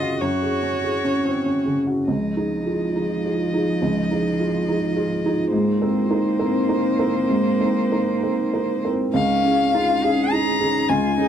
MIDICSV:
0, 0, Header, 1, 5, 480
1, 0, Start_track
1, 0, Key_signature, -5, "major"
1, 0, Tempo, 619195
1, 169, Time_signature, 3, 2, 24, 8
1, 1608, Tempo, 576369
1, 5448, Tempo, 614125
1, 7368, Tempo, 581395
1, 9135, End_track
2, 0, Start_track
2, 0, Title_t, "Violin"
2, 0, Program_c, 0, 40
2, 0, Note_on_c, 0, 75, 77
2, 161, Note_on_c, 0, 73, 62
2, 172, Note_off_c, 0, 75, 0
2, 1369, Note_off_c, 0, 73, 0
2, 1606, Note_on_c, 0, 75, 47
2, 4447, Note_off_c, 0, 75, 0
2, 4468, Note_on_c, 0, 72, 62
2, 7170, Note_off_c, 0, 72, 0
2, 7364, Note_on_c, 0, 77, 88
2, 8338, Note_on_c, 0, 82, 82
2, 8351, Note_off_c, 0, 77, 0
2, 8811, Note_on_c, 0, 80, 70
2, 8823, Note_off_c, 0, 82, 0
2, 9135, Note_off_c, 0, 80, 0
2, 9135, End_track
3, 0, Start_track
3, 0, Title_t, "Cello"
3, 0, Program_c, 1, 42
3, 0, Note_on_c, 1, 65, 50
3, 159, Note_off_c, 1, 65, 0
3, 163, Note_on_c, 1, 66, 64
3, 1346, Note_off_c, 1, 66, 0
3, 1611, Note_on_c, 1, 53, 47
3, 4450, Note_off_c, 1, 53, 0
3, 4481, Note_on_c, 1, 58, 67
3, 7176, Note_off_c, 1, 58, 0
3, 7368, Note_on_c, 1, 61, 70
3, 7866, Note_on_c, 1, 65, 61
3, 7878, Note_off_c, 1, 61, 0
3, 8104, Note_on_c, 1, 68, 72
3, 8117, Note_off_c, 1, 65, 0
3, 8820, Note_on_c, 1, 65, 63
3, 8833, Note_off_c, 1, 68, 0
3, 9046, Note_off_c, 1, 65, 0
3, 9051, Note_on_c, 1, 63, 61
3, 9135, Note_off_c, 1, 63, 0
3, 9135, End_track
4, 0, Start_track
4, 0, Title_t, "Ambient pad"
4, 0, Program_c, 2, 92
4, 1604, Note_on_c, 2, 65, 50
4, 1609, Note_on_c, 2, 63, 46
4, 1610, Note_on_c, 2, 68, 53
4, 4447, Note_off_c, 2, 65, 0
4, 4449, Note_off_c, 2, 63, 0
4, 4449, Note_off_c, 2, 68, 0
4, 4480, Note_on_c, 2, 63, 60
4, 4481, Note_on_c, 2, 70, 56
4, 4485, Note_on_c, 2, 60, 53
4, 7352, Note_off_c, 2, 63, 0
4, 7361, Note_on_c, 2, 63, 69
4, 7365, Note_on_c, 2, 61, 69
4, 7365, Note_on_c, 2, 68, 66
4, 7367, Note_off_c, 2, 70, 0
4, 7369, Note_off_c, 2, 60, 0
4, 9135, Note_off_c, 2, 61, 0
4, 9135, Note_off_c, 2, 63, 0
4, 9135, Note_off_c, 2, 68, 0
4, 9135, End_track
5, 0, Start_track
5, 0, Title_t, "Felt piano"
5, 0, Program_c, 3, 0
5, 0, Control_c, 3, 64, 127
5, 0, Note_on_c, 3, 42, 56
5, 0, Note_on_c, 3, 49, 40
5, 0, Note_on_c, 3, 60, 37
5, 0, Note_on_c, 3, 61, 47
5, 0, Note_on_c, 3, 68, 45
5, 7, Note_on_c, 3, 66, 43
5, 102, Note_off_c, 3, 49, 0
5, 141, Note_off_c, 3, 42, 0
5, 168, Note_on_c, 3, 42, 48
5, 183, Control_c, 3, 64, 0
5, 186, Note_off_c, 3, 61, 0
5, 188, Note_off_c, 3, 68, 0
5, 189, Note_off_c, 3, 60, 0
5, 266, Note_off_c, 3, 66, 0
5, 318, Control_c, 3, 64, 127
5, 328, Note_on_c, 3, 68, 38
5, 487, Note_on_c, 3, 61, 38
5, 586, Note_off_c, 3, 68, 0
5, 648, Note_on_c, 3, 68, 41
5, 745, Note_off_c, 3, 61, 0
5, 811, Note_on_c, 3, 61, 42
5, 906, Note_off_c, 3, 68, 0
5, 970, Note_on_c, 3, 60, 32
5, 1068, Note_off_c, 3, 61, 0
5, 1129, Note_on_c, 3, 61, 39
5, 1131, Note_off_c, 3, 60, 0
5, 1285, Note_on_c, 3, 49, 39
5, 1388, Note_off_c, 3, 61, 0
5, 1447, Note_on_c, 3, 66, 41
5, 1544, Note_off_c, 3, 49, 0
5, 1578, Note_off_c, 3, 42, 0
5, 1606, Note_off_c, 3, 66, 0
5, 1611, Note_on_c, 3, 37, 33
5, 1624, Control_c, 3, 64, 0
5, 1789, Control_c, 3, 64, 127
5, 1852, Note_on_c, 3, 63, 28
5, 1856, Note_on_c, 3, 68, 31
5, 2073, Note_off_c, 3, 63, 0
5, 2075, Note_off_c, 3, 68, 0
5, 2096, Note_on_c, 3, 65, 26
5, 2099, Note_on_c, 3, 68, 27
5, 2316, Note_off_c, 3, 65, 0
5, 2318, Note_off_c, 3, 68, 0
5, 2342, Note_on_c, 3, 63, 28
5, 2348, Note_on_c, 3, 68, 30
5, 2560, Note_off_c, 3, 63, 0
5, 2563, Note_off_c, 3, 68, 0
5, 2585, Note_on_c, 3, 65, 31
5, 2590, Note_on_c, 3, 68, 34
5, 2802, Note_off_c, 3, 65, 0
5, 2805, Note_off_c, 3, 68, 0
5, 2827, Note_on_c, 3, 63, 34
5, 2831, Note_on_c, 3, 68, 37
5, 3033, Note_off_c, 3, 37, 0
5, 3042, Note_off_c, 3, 63, 0
5, 3044, Note_off_c, 3, 68, 0
5, 3060, Note_on_c, 3, 37, 43
5, 3080, Control_c, 3, 64, 0
5, 3196, Control_c, 3, 64, 127
5, 3302, Note_on_c, 3, 63, 32
5, 3307, Note_on_c, 3, 68, 37
5, 3516, Note_off_c, 3, 63, 0
5, 3519, Note_off_c, 3, 68, 0
5, 3541, Note_on_c, 3, 65, 33
5, 3544, Note_on_c, 3, 68, 36
5, 3753, Note_off_c, 3, 65, 0
5, 3755, Note_off_c, 3, 68, 0
5, 3782, Note_on_c, 3, 63, 36
5, 3784, Note_on_c, 3, 68, 39
5, 3991, Note_off_c, 3, 63, 0
5, 3992, Note_off_c, 3, 68, 0
5, 4015, Note_on_c, 3, 65, 41
5, 4017, Note_on_c, 3, 68, 41
5, 4225, Note_off_c, 3, 65, 0
5, 4226, Note_off_c, 3, 68, 0
5, 4256, Note_on_c, 3, 68, 42
5, 4258, Note_on_c, 3, 63, 41
5, 4446, Note_off_c, 3, 37, 0
5, 4464, Note_off_c, 3, 68, 0
5, 4465, Note_off_c, 3, 63, 0
5, 4483, Note_on_c, 3, 44, 48
5, 4497, Control_c, 3, 64, 0
5, 4613, Control_c, 3, 64, 127
5, 4723, Note_on_c, 3, 60, 39
5, 4726, Note_on_c, 3, 70, 42
5, 4937, Note_off_c, 3, 60, 0
5, 4939, Note_off_c, 3, 70, 0
5, 4963, Note_on_c, 3, 63, 37
5, 4966, Note_on_c, 3, 70, 39
5, 5179, Note_off_c, 3, 63, 0
5, 5180, Note_off_c, 3, 70, 0
5, 5205, Note_on_c, 3, 60, 39
5, 5205, Note_on_c, 3, 70, 45
5, 5425, Note_off_c, 3, 60, 0
5, 5426, Note_off_c, 3, 70, 0
5, 5449, Note_on_c, 3, 63, 43
5, 5453, Note_on_c, 3, 70, 43
5, 5662, Note_off_c, 3, 63, 0
5, 5664, Note_off_c, 3, 70, 0
5, 5683, Note_on_c, 3, 60, 41
5, 5690, Note_on_c, 3, 70, 41
5, 5896, Note_off_c, 3, 44, 0
5, 5901, Note_off_c, 3, 60, 0
5, 5905, Note_off_c, 3, 70, 0
5, 5922, Note_on_c, 3, 44, 42
5, 5943, Control_c, 3, 64, 0
5, 6063, Control_c, 3, 64, 127
5, 6165, Note_on_c, 3, 60, 33
5, 6171, Note_on_c, 3, 70, 33
5, 6386, Note_off_c, 3, 60, 0
5, 6389, Note_off_c, 3, 70, 0
5, 6414, Note_on_c, 3, 63, 30
5, 6415, Note_on_c, 3, 70, 33
5, 6631, Note_off_c, 3, 63, 0
5, 6631, Note_off_c, 3, 70, 0
5, 6653, Note_on_c, 3, 60, 30
5, 6659, Note_on_c, 3, 70, 31
5, 6869, Note_off_c, 3, 60, 0
5, 6872, Note_off_c, 3, 70, 0
5, 6894, Note_on_c, 3, 70, 38
5, 6896, Note_on_c, 3, 63, 35
5, 7109, Note_off_c, 3, 70, 0
5, 7111, Note_off_c, 3, 63, 0
5, 7136, Note_on_c, 3, 60, 35
5, 7139, Note_on_c, 3, 70, 37
5, 7334, Note_off_c, 3, 44, 0
5, 7346, Note_off_c, 3, 60, 0
5, 7347, Note_off_c, 3, 70, 0
5, 7364, Note_on_c, 3, 37, 57
5, 7385, Control_c, 3, 64, 0
5, 7515, Control_c, 3, 64, 127
5, 7614, Note_on_c, 3, 61, 42
5, 7617, Note_on_c, 3, 68, 49
5, 7832, Note_off_c, 3, 61, 0
5, 7834, Note_off_c, 3, 68, 0
5, 7864, Note_on_c, 3, 63, 40
5, 7867, Note_on_c, 3, 68, 43
5, 8078, Note_off_c, 3, 63, 0
5, 8080, Note_off_c, 3, 68, 0
5, 8111, Note_on_c, 3, 61, 41
5, 8114, Note_on_c, 3, 68, 48
5, 8322, Note_off_c, 3, 61, 0
5, 8323, Note_off_c, 3, 68, 0
5, 8346, Note_on_c, 3, 63, 49
5, 8352, Note_on_c, 3, 68, 47
5, 8557, Note_off_c, 3, 63, 0
5, 8560, Note_off_c, 3, 68, 0
5, 8578, Note_on_c, 3, 61, 43
5, 8579, Note_on_c, 3, 68, 49
5, 8779, Note_off_c, 3, 37, 0
5, 8791, Note_off_c, 3, 61, 0
5, 8791, Note_off_c, 3, 68, 0
5, 8814, Note_on_c, 3, 37, 56
5, 8829, Control_c, 3, 64, 0
5, 8963, Control_c, 3, 64, 127
5, 9050, Note_on_c, 3, 61, 43
5, 9052, Note_on_c, 3, 68, 44
5, 9135, Note_off_c, 3, 37, 0
5, 9135, Note_off_c, 3, 61, 0
5, 9135, Note_off_c, 3, 68, 0
5, 9135, End_track
0, 0, End_of_file